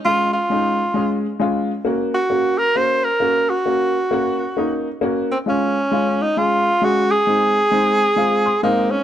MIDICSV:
0, 0, Header, 1, 3, 480
1, 0, Start_track
1, 0, Tempo, 451467
1, 54, Time_signature, 4, 2, 24, 8
1, 9606, End_track
2, 0, Start_track
2, 0, Title_t, "Tenor saxophone"
2, 0, Program_c, 0, 66
2, 54, Note_on_c, 0, 65, 115
2, 326, Note_off_c, 0, 65, 0
2, 352, Note_on_c, 0, 65, 98
2, 1266, Note_off_c, 0, 65, 0
2, 2277, Note_on_c, 0, 66, 94
2, 2747, Note_on_c, 0, 70, 107
2, 2763, Note_off_c, 0, 66, 0
2, 2942, Note_on_c, 0, 72, 101
2, 2958, Note_off_c, 0, 70, 0
2, 3233, Note_on_c, 0, 70, 101
2, 3249, Note_off_c, 0, 72, 0
2, 3717, Note_on_c, 0, 66, 88
2, 3733, Note_off_c, 0, 70, 0
2, 5153, Note_off_c, 0, 66, 0
2, 5650, Note_on_c, 0, 60, 75
2, 5729, Note_off_c, 0, 60, 0
2, 5841, Note_on_c, 0, 61, 96
2, 6610, Note_on_c, 0, 63, 93
2, 6626, Note_off_c, 0, 61, 0
2, 6786, Note_on_c, 0, 65, 98
2, 6802, Note_off_c, 0, 63, 0
2, 7274, Note_on_c, 0, 66, 106
2, 7290, Note_off_c, 0, 65, 0
2, 7565, Note_on_c, 0, 68, 104
2, 7581, Note_off_c, 0, 66, 0
2, 9173, Note_off_c, 0, 68, 0
2, 9180, Note_on_c, 0, 58, 96
2, 9472, Note_on_c, 0, 61, 92
2, 9488, Note_off_c, 0, 58, 0
2, 9606, Note_off_c, 0, 61, 0
2, 9606, End_track
3, 0, Start_track
3, 0, Title_t, "Upright piano"
3, 0, Program_c, 1, 0
3, 55, Note_on_c, 1, 56, 67
3, 59, Note_on_c, 1, 61, 60
3, 67, Note_on_c, 1, 65, 76
3, 375, Note_off_c, 1, 56, 0
3, 377, Note_off_c, 1, 61, 0
3, 381, Note_off_c, 1, 65, 0
3, 531, Note_on_c, 1, 56, 70
3, 540, Note_on_c, 1, 61, 67
3, 547, Note_on_c, 1, 63, 76
3, 853, Note_off_c, 1, 56, 0
3, 857, Note_off_c, 1, 61, 0
3, 861, Note_off_c, 1, 63, 0
3, 1000, Note_on_c, 1, 56, 86
3, 1012, Note_on_c, 1, 61, 74
3, 1023, Note_on_c, 1, 68, 81
3, 1327, Note_off_c, 1, 56, 0
3, 1333, Note_off_c, 1, 61, 0
3, 1339, Note_off_c, 1, 68, 0
3, 1484, Note_on_c, 1, 56, 89
3, 1492, Note_on_c, 1, 61, 83
3, 1503, Note_on_c, 1, 65, 97
3, 1810, Note_off_c, 1, 56, 0
3, 1813, Note_off_c, 1, 61, 0
3, 1819, Note_off_c, 1, 65, 0
3, 1962, Note_on_c, 1, 58, 83
3, 1974, Note_on_c, 1, 61, 75
3, 1978, Note_on_c, 1, 66, 92
3, 2289, Note_off_c, 1, 58, 0
3, 2294, Note_off_c, 1, 61, 0
3, 2296, Note_off_c, 1, 66, 0
3, 2444, Note_on_c, 1, 58, 72
3, 2451, Note_on_c, 1, 61, 62
3, 2464, Note_on_c, 1, 66, 75
3, 2770, Note_off_c, 1, 58, 0
3, 2773, Note_off_c, 1, 61, 0
3, 2780, Note_off_c, 1, 66, 0
3, 2930, Note_on_c, 1, 58, 72
3, 2936, Note_on_c, 1, 61, 59
3, 2944, Note_on_c, 1, 66, 67
3, 3253, Note_off_c, 1, 58, 0
3, 3256, Note_off_c, 1, 61, 0
3, 3260, Note_off_c, 1, 66, 0
3, 3404, Note_on_c, 1, 58, 75
3, 3412, Note_on_c, 1, 61, 69
3, 3425, Note_on_c, 1, 66, 88
3, 3730, Note_off_c, 1, 58, 0
3, 3734, Note_off_c, 1, 61, 0
3, 3741, Note_off_c, 1, 66, 0
3, 3888, Note_on_c, 1, 58, 73
3, 3896, Note_on_c, 1, 61, 65
3, 3902, Note_on_c, 1, 66, 78
3, 4212, Note_off_c, 1, 58, 0
3, 4216, Note_off_c, 1, 61, 0
3, 4219, Note_off_c, 1, 66, 0
3, 4369, Note_on_c, 1, 58, 86
3, 4379, Note_on_c, 1, 61, 76
3, 4390, Note_on_c, 1, 66, 102
3, 4693, Note_off_c, 1, 58, 0
3, 4698, Note_off_c, 1, 61, 0
3, 4703, Note_off_c, 1, 66, 0
3, 4856, Note_on_c, 1, 58, 82
3, 4860, Note_on_c, 1, 61, 70
3, 4869, Note_on_c, 1, 63, 94
3, 5177, Note_off_c, 1, 58, 0
3, 5179, Note_off_c, 1, 61, 0
3, 5183, Note_off_c, 1, 63, 0
3, 5329, Note_on_c, 1, 58, 93
3, 5337, Note_on_c, 1, 61, 90
3, 5347, Note_on_c, 1, 66, 97
3, 5653, Note_off_c, 1, 58, 0
3, 5658, Note_off_c, 1, 61, 0
3, 5662, Note_off_c, 1, 66, 0
3, 5805, Note_on_c, 1, 56, 70
3, 5815, Note_on_c, 1, 61, 67
3, 5823, Note_on_c, 1, 65, 82
3, 6131, Note_off_c, 1, 56, 0
3, 6136, Note_off_c, 1, 61, 0
3, 6140, Note_off_c, 1, 65, 0
3, 6290, Note_on_c, 1, 56, 78
3, 6298, Note_on_c, 1, 61, 68
3, 6305, Note_on_c, 1, 65, 82
3, 6614, Note_off_c, 1, 56, 0
3, 6618, Note_off_c, 1, 61, 0
3, 6622, Note_off_c, 1, 65, 0
3, 6772, Note_on_c, 1, 56, 70
3, 6784, Note_on_c, 1, 61, 61
3, 6788, Note_on_c, 1, 68, 74
3, 7095, Note_off_c, 1, 56, 0
3, 7101, Note_off_c, 1, 61, 0
3, 7103, Note_off_c, 1, 68, 0
3, 7247, Note_on_c, 1, 56, 78
3, 7259, Note_on_c, 1, 61, 70
3, 7264, Note_on_c, 1, 68, 87
3, 7572, Note_off_c, 1, 56, 0
3, 7578, Note_off_c, 1, 61, 0
3, 7581, Note_off_c, 1, 68, 0
3, 7727, Note_on_c, 1, 56, 65
3, 7733, Note_on_c, 1, 60, 66
3, 7745, Note_on_c, 1, 63, 79
3, 8052, Note_off_c, 1, 56, 0
3, 8055, Note_off_c, 1, 60, 0
3, 8061, Note_off_c, 1, 63, 0
3, 8202, Note_on_c, 1, 56, 84
3, 8210, Note_on_c, 1, 60, 77
3, 8216, Note_on_c, 1, 63, 88
3, 8530, Note_off_c, 1, 56, 0
3, 8533, Note_off_c, 1, 60, 0
3, 8536, Note_off_c, 1, 63, 0
3, 8679, Note_on_c, 1, 56, 81
3, 8686, Note_on_c, 1, 60, 70
3, 8694, Note_on_c, 1, 65, 90
3, 8992, Note_on_c, 1, 84, 71
3, 9008, Note_off_c, 1, 56, 0
3, 9011, Note_off_c, 1, 60, 0
3, 9015, Note_off_c, 1, 65, 0
3, 9165, Note_off_c, 1, 84, 0
3, 9176, Note_on_c, 1, 56, 89
3, 9179, Note_on_c, 1, 60, 86
3, 9181, Note_on_c, 1, 80, 77
3, 9189, Note_on_c, 1, 63, 96
3, 9496, Note_off_c, 1, 56, 0
3, 9498, Note_off_c, 1, 60, 0
3, 9503, Note_off_c, 1, 63, 0
3, 9606, Note_off_c, 1, 80, 0
3, 9606, End_track
0, 0, End_of_file